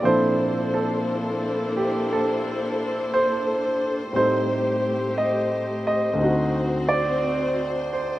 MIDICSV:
0, 0, Header, 1, 3, 480
1, 0, Start_track
1, 0, Tempo, 1027397
1, 15, Time_signature, 4, 2, 24, 8
1, 3826, End_track
2, 0, Start_track
2, 0, Title_t, "Grand piano"
2, 0, Program_c, 0, 0
2, 0, Control_c, 0, 64, 127
2, 8, Note_on_c, 0, 46, 51
2, 13, Note_on_c, 0, 53, 43
2, 15, Note_on_c, 0, 60, 46
2, 16, Note_on_c, 0, 62, 45
2, 21, Control_c, 0, 64, 0
2, 24, Note_on_c, 0, 72, 87
2, 26, Note_on_c, 0, 64, 46
2, 29, Note_on_c, 0, 69, 53
2, 95, Control_c, 0, 64, 127
2, 338, Note_off_c, 0, 69, 0
2, 345, Note_on_c, 0, 69, 64
2, 347, Note_off_c, 0, 72, 0
2, 826, Note_on_c, 0, 67, 59
2, 834, Note_off_c, 0, 69, 0
2, 987, Note_off_c, 0, 67, 0
2, 994, Note_on_c, 0, 69, 70
2, 1465, Note_on_c, 0, 72, 83
2, 1479, Note_off_c, 0, 69, 0
2, 1921, Note_off_c, 0, 72, 0
2, 1927, Note_off_c, 0, 60, 0
2, 1928, Note_on_c, 0, 45, 41
2, 1931, Note_on_c, 0, 55, 40
2, 1932, Note_off_c, 0, 46, 0
2, 1934, Note_on_c, 0, 60, 38
2, 1935, Note_off_c, 0, 53, 0
2, 1936, Note_off_c, 0, 62, 0
2, 1941, Note_off_c, 0, 64, 0
2, 1941, Control_c, 0, 64, 0
2, 1944, Note_on_c, 0, 72, 84
2, 1946, Note_on_c, 0, 63, 39
2, 1948, Note_on_c, 0, 69, 45
2, 2013, Control_c, 0, 64, 127
2, 2401, Note_off_c, 0, 72, 0
2, 2419, Note_on_c, 0, 75, 71
2, 2715, Note_off_c, 0, 75, 0
2, 2742, Note_on_c, 0, 75, 77
2, 2865, Note_on_c, 0, 38, 46
2, 2872, Note_on_c, 0, 50, 45
2, 2882, Note_off_c, 0, 60, 0
2, 2889, Note_on_c, 0, 60, 35
2, 2890, Note_off_c, 0, 45, 0
2, 2892, Note_off_c, 0, 55, 0
2, 2894, Note_off_c, 0, 63, 0
2, 2899, Control_c, 0, 64, 0
2, 2900, Note_off_c, 0, 69, 0
2, 2901, Note_on_c, 0, 63, 40
2, 2912, Note_on_c, 0, 66, 47
2, 2988, Control_c, 0, 64, 127
2, 3217, Note_on_c, 0, 74, 77
2, 3230, Note_off_c, 0, 75, 0
2, 3705, Note_on_c, 0, 72, 60
2, 3707, Note_off_c, 0, 74, 0
2, 3826, Note_off_c, 0, 38, 0
2, 3826, Note_off_c, 0, 50, 0
2, 3826, Note_off_c, 0, 60, 0
2, 3826, Note_off_c, 0, 63, 0
2, 3826, Note_off_c, 0, 66, 0
2, 3826, Note_off_c, 0, 72, 0
2, 3826, End_track
3, 0, Start_track
3, 0, Title_t, "String section"
3, 0, Program_c, 1, 48
3, 0, Note_on_c, 1, 64, 44
3, 0, Note_on_c, 1, 69, 53
3, 3, Note_on_c, 1, 62, 53
3, 9, Note_on_c, 1, 58, 51
3, 9, Note_on_c, 1, 72, 65
3, 1908, Note_off_c, 1, 69, 0
3, 1909, Note_off_c, 1, 64, 0
3, 1911, Note_off_c, 1, 62, 0
3, 1914, Note_off_c, 1, 58, 0
3, 1930, Note_on_c, 1, 67, 55
3, 1933, Note_on_c, 1, 57, 55
3, 2872, Note_off_c, 1, 72, 0
3, 2881, Note_off_c, 1, 67, 0
3, 2883, Note_off_c, 1, 57, 0
3, 2890, Note_on_c, 1, 66, 60
3, 2896, Note_on_c, 1, 72, 65
3, 2901, Note_on_c, 1, 60, 65
3, 3826, Note_off_c, 1, 60, 0
3, 3826, Note_off_c, 1, 66, 0
3, 3826, Note_off_c, 1, 72, 0
3, 3826, End_track
0, 0, End_of_file